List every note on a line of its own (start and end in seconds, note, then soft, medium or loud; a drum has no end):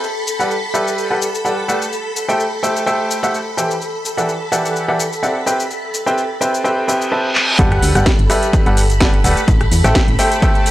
0.00 7.12 A4 medium
0.00 7.12 B5 medium
0.00 shaker soft
0.27 shaker medium
0.40 0.53 G3 medium
0.40 0.53 G4 medium
0.40 0.53 A4 medium
0.40 0.53 B4 medium
0.40 0.53 D5 medium
0.40 0.53 F#5 medium
0.40 shaker soft
0.51 shaker soft
0.74 1.07 G3 medium
0.74 1.07 G4 medium
0.74 1.07 A4 medium
0.74 1.07 B4 medium
0.74 1.07 D5 medium
0.74 1.07 E5 medium
0.74 shaker medium
0.87 shaker soft
0.98 shaker soft
1.10 1.24 G3 medium
1.10 1.24 G4 medium
1.10 1.24 A4 medium
1.10 1.24 B4 medium
1.10 1.24 D5 medium
1.10 1.24 F#5 medium
1.22 shaker medium
1.35 shaker soft
1.45 1.60 G3 medium
1.45 1.60 G4 medium
1.45 1.60 A4 medium
1.45 1.60 B4 medium
1.45 1.60 D5 medium
1.45 1.60 F#5 medium
1.45 shaker soft
1.68 1.83 A3 medium
1.68 1.83 G4 medium
1.68 1.83 A4 medium
1.68 1.83 B4 medium
1.68 1.83 D5 medium
1.68 1.83 F#5 medium
1.68 shaker medium
1.82 shaker soft
1.93 shaker soft
2.16 shaker medium
2.29 2.42 A3 medium
2.29 2.42 G4 medium
2.29 2.42 A4 medium
2.29 2.42 C5 medium
2.29 2.42 E5 medium
2.29 2.42 G5 medium
2.29 shaker soft
2.40 shaker soft
2.63 2.83 A3 medium
2.63 2.83 G4 medium
2.63 2.83 A4 medium
2.63 2.83 C5 medium
2.63 2.83 E5 medium
2.63 2.83 G5 medium
2.63 shaker medium
2.76 shaker soft
2.86 3.20 A3 medium
2.86 3.20 G4 medium
2.86 3.20 A4 medium
2.86 3.20 C5 medium
2.86 3.20 E5 medium
2.86 3.20 G5 medium
2.86 shaker soft
3.11 shaker medium
3.23 3.36 A3 medium
3.23 3.36 G4 medium
3.23 3.36 A4 medium
3.23 3.36 C5 medium
3.23 3.36 E5 medium
3.23 3.36 F#5 medium
3.23 shaker soft
3.34 shaker soft
3.57 3.72 E3 medium
3.57 3.72 G4 medium
3.57 3.72 A4 medium
3.57 3.72 C5 medium
3.57 3.72 E5 medium
3.57 3.72 G5 medium
3.57 shaker medium
3.71 shaker soft
3.82 shaker soft
4.05 shaker medium
4.17 4.31 E3 medium
4.17 4.31 G4 medium
4.17 4.31 A4 medium
4.17 4.31 D5 medium
4.17 4.31 E5 medium
4.17 4.31 F#5 medium
4.17 shaker soft
4.29 shaker soft
4.52 4.85 E3 medium
4.52 4.85 G4 medium
4.52 4.85 A4 medium
4.52 4.85 D5 medium
4.52 4.85 E5 medium
4.52 4.85 F#5 medium
4.52 shaker medium
4.65 shaker soft
4.76 shaker soft
4.88 5.02 E3 medium
4.88 5.02 G4 medium
4.88 5.02 A4 medium
4.88 5.02 D5 medium
4.88 5.02 E5 medium
4.88 5.02 F#5 medium
5.00 shaker medium
5.13 shaker soft
5.23 5.38 C4 medium
5.23 5.38 G4 medium
5.23 5.38 A4 medium
5.23 5.38 D5 medium
5.23 5.38 E5 medium
5.23 5.38 F#5 medium
5.23 shaker soft
5.46 5.61 C4 medium
5.46 5.61 G4 medium
5.46 5.61 B4 medium
5.46 5.61 C5 medium
5.46 5.61 E5 medium
5.46 5.61 G5 medium
5.46 shaker medium
5.60 shaker soft
5.71 shaker soft
5.94 shaker medium
6.06 6.20 C4 medium
6.06 6.20 G4 medium
6.06 6.20 B4 medium
6.06 6.20 C5 medium
6.06 6.20 E5 medium
6.06 6.20 G5 medium
6.06 shaker soft
6.18 shaker soft
6.41 6.61 C4 medium
6.41 6.61 G4 medium
6.41 6.61 B4 medium
6.41 6.61 C5 medium
6.41 6.61 E5 medium
6.41 6.61 G5 medium
6.41 shaker medium
6.54 shaker soft
6.64 6.86 C4 medium
6.64 6.86 G4 medium
6.64 6.86 B4 medium
6.64 6.86 C5 medium
6.64 6.86 E5 medium
6.64 6.86 G5 medium
6.64 reverse cymbal medium
6.64 shaker soft
6.88 7.08 C4 medium
6.88 7.08 G4 medium
6.88 7.08 B4 medium
6.88 7.08 C5 medium
6.88 7.08 E5 medium
6.88 7.08 G5 medium
6.88 shaker medium
7.02 shaker soft
7.12 7.58 C4 medium
7.12 7.57 G4 medium
7.12 7.57 B4 medium
7.12 7.58 C5 medium
7.12 7.58 E5 medium
7.12 7.58 A5 medium
7.35 clap medium
7.59 7.79 G1 loud
7.59 7.90 G3 loud
7.59 7.90 G4 loud
7.59 10.71 A4 medium
7.59 7.90 A4 loud
7.59 7.90 B4 loud
7.59 7.90 D5 medium
7.59 7.90 F#5 loud
7.59 10.71 B5 medium
7.59 kick loud
7.59 closed hi-hat medium
7.59 sub drop medium
7.59 shaker soft
7.72 cross-stick medium
7.72 closed hi-hat soft
7.82 7.93 D2 medium
7.82 open hi-hat loud
7.82 shaker medium
7.95 8.04 G1 loud
7.95 8.09 G3 medium
7.95 8.09 G4 medium
7.95 8.09 A4 medium
7.95 8.09 B4 medium
7.95 8.09 D5 medium
7.95 8.09 F#5 medium
7.95 cross-stick medium
7.95 closed hi-hat medium
7.95 shaker soft
8.06 kick loud
8.06 snare loud
8.06 closed hi-hat medium
8.06 shaker soft
8.19 8.28 G1 loud
8.19 closed hi-hat soft
8.30 8.63 G3 loud
8.30 8.63 G4 medium
8.30 8.63 A4 medium
8.30 8.63 B4 medium
8.30 8.63 D5 medium
8.30 8.63 E5 loud
8.30 cross-stick medium
8.30 open hi-hat loud
8.30 shaker medium
8.43 closed hi-hat medium
8.43 shaker soft
8.53 kick loud
8.53 closed hi-hat medium
8.53 shaker soft
8.66 9.22 G1 loud
8.66 8.80 G3 medium
8.66 8.80 G4 medium
8.66 8.80 A4 medium
8.66 8.80 B4 medium
8.66 8.80 D5 medium
8.66 8.80 F#5 loud
8.66 closed hi-hat soft
8.77 open hi-hat loud
8.77 shaker medium
8.90 closed hi-hat medium
8.90 shaker soft
9.00 9.16 G3 medium
9.00 9.16 G4 medium
9.00 9.16 A4 medium
9.00 9.16 B4 medium
9.00 9.16 D5 medium
9.00 9.16 F#5 medium
9.00 kick loud
9.00 snare loud
9.00 closed hi-hat medium
9.00 shaker soft
9.13 closed hi-hat soft
9.24 9.35 D1 loud
9.24 9.39 A3 medium
9.24 9.39 G4 medium
9.24 9.39 A4 medium
9.24 9.39 B4 medium
9.24 9.39 D5 medium
9.24 9.39 F#5 medium
9.24 open hi-hat loud
9.24 shaker medium
9.37 closed hi-hat medium
9.37 shaker soft
9.48 9.68 A1 loud
9.48 kick loud
9.48 closed hi-hat medium
9.48 shaker soft
9.61 cross-stick medium
9.61 closed hi-hat soft
9.71 9.82 E2 medium
9.71 open hi-hat loud
9.71 shaker medium
9.84 9.93 A1 loud
9.84 9.98 A3 medium
9.84 9.98 G4 medium
9.84 9.98 A4 medium
9.84 9.98 C5 medium
9.84 9.98 E5 medium
9.84 9.98 G5 loud
9.84 cross-stick medium
9.84 closed hi-hat medium
9.84 shaker soft
9.95 kick loud
9.95 snare loud
9.95 closed hi-hat medium
9.95 shaker soft
10.08 10.17 A1 loud
10.08 closed hi-hat soft
10.19 10.39 A3 medium
10.19 10.39 G4 medium
10.19 10.39 A4 medium
10.19 10.39 C5 medium
10.19 10.39 E5 medium
10.19 10.39 G5 medium
10.19 open hi-hat loud
10.19 shaker medium
10.32 closed hi-hat medium
10.32 shaker soft
10.42 10.71 A3 medium
10.42 10.71 G4 medium
10.42 10.71 A4 medium
10.42 10.71 C5 medium
10.42 10.71 E5 medium
10.42 10.71 G5 loud
10.42 kick loud
10.42 closed hi-hat soft
10.42 shaker soft
10.55 closed hi-hat soft
10.66 open hi-hat loud
10.66 shaker medium